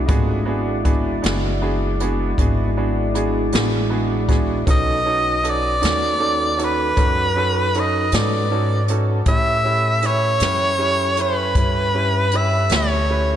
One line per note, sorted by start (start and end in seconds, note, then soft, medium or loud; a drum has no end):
0.06 1.20 G#1 medium
0.06 0.46 A3 medium
0.06 0.37 B3 medium
0.06 0.37 D4 medium
0.06 0.46 F4 medium
0.06 0.38 F#4 medium
0.06 0.38 G#4 medium
0.06 0.45 D#5 medium
0.06 kick loud
0.06 closed hi-hat medium
0.45 4.65 G#3 medium
0.45 0.75 B3 medium
0.45 0.75 D4 medium
0.45 0.75 F#4 medium
0.45 0.76 G#4 medium
0.45 4.65 D5 medium
0.49 4.65 E4 medium
0.85 1.14 B3 medium
0.85 1.14 D4 medium
0.85 1.14 F#4 medium
0.85 1.14 G#4 medium
0.85 kick medium
0.85 closed hi-hat medium
1.22 2.35 F#1 medium
1.22 1.51 B3 medium
1.22 1.52 D4 medium
1.22 1.52 F#4 medium
1.22 1.52 G#4 medium
1.22 closed hi-hat medium
1.26 snare medium
1.62 1.90 B3 medium
1.62 1.91 D4 medium
1.62 1.91 F#4 medium
1.62 1.91 G#4 medium
2.00 2.29 B3 medium
2.00 2.29 D4 medium
2.00 2.29 F#4 medium
2.00 2.30 G#4 medium
2.00 closed hi-hat medium
2.38 3.50 G#1 medium
2.38 2.67 B3 medium
2.38 2.68 D4 medium
2.38 2.68 F#4 soft
2.38 2.68 G#4 medium
2.38 kick medium
2.38 closed hi-hat medium
2.77 3.06 B3 medium
2.77 3.06 D4 medium
2.77 3.06 F#4 medium
2.77 3.06 G#4 medium
3.15 3.44 B3 medium
3.15 3.44 D4 medium
3.15 3.44 F#4 medium
3.15 3.44 G#4 medium
3.15 closed hi-hat medium
3.52 4.65 A1 medium
3.52 3.82 B3 medium
3.52 3.82 D4 soft
3.52 3.82 F#4 medium
3.52 3.82 G#4 medium
3.52 snare medium
3.52 closed hi-hat medium
3.90 4.19 B3 medium
3.90 4.20 D4 medium
3.90 4.20 F#4 soft
3.90 4.20 G#4 medium
4.28 4.58 B3 medium
4.28 4.58 D4 soft
4.28 4.58 F#4 medium
4.28 4.58 G#4 medium
4.28 kick medium
4.28 snare soft
4.28 closed hi-hat medium
4.66 5.79 B1 medium
4.66 4.96 C#4 medium
4.66 9.22 D#4 medium
4.66 4.96 D#4 medium
4.66 4.96 F#4 medium
4.66 9.22 A4 medium
4.66 4.97 A4 medium
4.66 9.22 B4 medium
4.66 kick medium
4.66 closed hi-hat medium
4.71 5.51 D#5 loud
5.05 5.34 C#4 soft
5.05 5.34 D#4 soft
5.05 5.35 F#4 soft
5.05 5.35 A4 soft
5.43 5.72 C#4 soft
5.43 5.73 D#4 soft
5.43 5.73 F#4 soft
5.43 5.73 A4 medium
5.43 closed hi-hat medium
5.49 6.66 D5 medium
5.81 6.94 D#2 medium
5.81 6.10 C#4 soft
5.81 6.11 D#4 soft
5.81 6.11 F#4 soft
5.81 6.12 A4 medium
5.81 closed hi-hat medium
5.85 snare medium
6.19 6.48 C#4 soft
6.19 6.49 D#4 soft
6.19 6.49 F#4 soft
6.19 6.49 A4 medium
6.57 6.87 C#4 soft
6.57 6.87 D#4 soft
6.57 6.87 F#4 soft
6.57 6.88 A4 medium
6.57 closed hi-hat medium
6.64 7.81 B4 medium
6.96 8.09 F#2 medium
6.96 7.26 C#4 soft
6.96 7.26 D#4 soft
6.96 7.26 F#4 soft
6.96 7.26 A4 medium
6.96 kick medium
6.96 closed hi-hat medium
7.36 7.64 C#4 soft
7.36 7.65 D#4 soft
7.36 7.65 F#4 soft
7.36 7.65 A4 medium
7.74 8.03 C#4 soft
7.74 8.03 D#4 soft
7.74 8.03 F#4 soft
7.74 8.04 A4 medium
7.74 closed hi-hat soft
7.79 8.17 D#5 medium
8.12 9.23 G#2 medium
8.12 8.41 C#4 soft
8.12 8.41 D#4 soft
8.12 8.42 F#4 soft
8.12 8.42 A4 medium
8.12 8.90 D5 medium
8.12 snare medium
8.12 closed hi-hat medium
8.51 8.79 C#4 soft
8.51 8.79 D#4 soft
8.51 8.80 F#4 soft
8.51 8.80 A4 medium
8.88 9.18 C#4 soft
8.88 9.18 D#4 soft
8.88 9.18 F#4 soft
8.88 9.18 A4 medium
8.88 closed hi-hat medium
9.25 10.38 A2 medium
9.25 13.36 C#4 medium
9.25 9.56 C#4 medium
9.25 9.56 E4 medium
9.25 13.36 G4 medium
9.25 9.56 G4 medium
9.25 13.36 A4 medium
9.25 9.56 B4 medium
9.25 10.08 E5 loud
9.25 kick loud
9.25 closed hi-hat medium
9.64 9.93 C#4 soft
9.64 9.93 E4 soft
9.64 9.94 G4 soft
9.64 9.94 B4 medium
10.02 10.32 C#4 soft
10.02 10.32 E4 soft
10.02 10.32 G4 soft
10.02 10.32 B4 medium
10.02 11.23 C#5 medium
10.02 closed hi-hat medium
10.40 11.52 F#2 medium
10.40 10.70 C#4 soft
10.40 10.70 E4 soft
10.40 10.70 G4 soft
10.40 10.71 B4 medium
10.40 snare medium
10.40 closed hi-hat medium
10.78 11.07 C#4 medium
10.78 11.08 E4 soft
10.78 11.08 G4 soft
10.78 11.08 B4 medium
11.17 11.46 C#4 soft
11.17 11.46 E4 soft
11.17 11.47 G4 soft
11.17 11.47 B4 medium
11.17 closed hi-hat medium
11.22 12.38 B4 medium
11.55 12.67 G2 medium
11.55 11.84 C#4 soft
11.55 11.85 E4 soft
11.55 11.85 G4 soft
11.55 11.85 B4 medium
11.55 kick medium
11.55 closed hi-hat medium
11.94 12.23 C#4 soft
11.94 12.23 E4 soft
11.94 12.23 G4 soft
11.94 12.23 B4 soft
12.31 12.61 C#4 soft
12.31 12.62 E4 soft
12.31 12.62 G4 soft
12.31 12.62 B4 medium
12.31 closed hi-hat medium
12.36 12.73 E5 medium
12.70 13.36 D2 medium
12.70 12.99 C#4 soft
12.70 13.00 E4 soft
12.70 13.00 G4 soft
12.70 13.00 B4 medium
12.70 snare medium
12.70 closed hi-hat medium
12.76 13.36 C#5 medium
13.10 13.36 C#4 soft
13.10 13.36 E4 soft
13.10 13.36 G4 soft
13.10 13.36 B4 medium